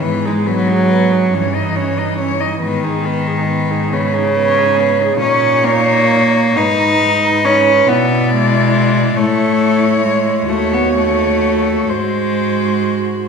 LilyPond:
<<
  \new Staff \with { instrumentName = "Cello" } { \time 6/8 \key gis \phrygian \tempo 4. = 46 b'16 gis'16 b'16 gis'16 b'16 gis'16 cis''16 dis''16 cis''16 dis''16 cis''16 dis''16 | b'16 gis'16 b'16 gis'16 b'16 gis'16 b'16 gis'16 b'16 gis'16 b'16 gis'16 | cis''4. b'8. b'8. | d''4. cis''4. |
cis''4. bis'4. | }
  \new Staff \with { instrumentName = "Cello" } { \time 6/8 \key gis \phrygian b16 dis'16 b16 dis'16 b16 dis'16 cis'16 dis'16 cis'16 dis'16 cis'16 dis'16 | b16 dis'16 b16 dis'16 b16 dis'16 b16 dis'16 b16 dis'16 b16 dis'16 | dis'4. dis'4. | e'4. e'4. |
fis'4. fis'4. | }
  \new Staff \with { instrumentName = "Cello" } { \clef bass \time 6/8 \key gis \phrygian e16 gis16 fis4 e4. | dis4. cis4. | cis'8 ais4 dis'4 cis'8 | b8 gis4 a4 gis8 |
a16 b16 a4 gis4. | }
  \new Staff \with { instrumentName = "Cello" } { \clef bass \time 6/8 \key gis \phrygian gis,4. g,4. | gis,2. | ais,4. gis,4. | b,4. a,4. |
dis,4. gis,4. | }
>>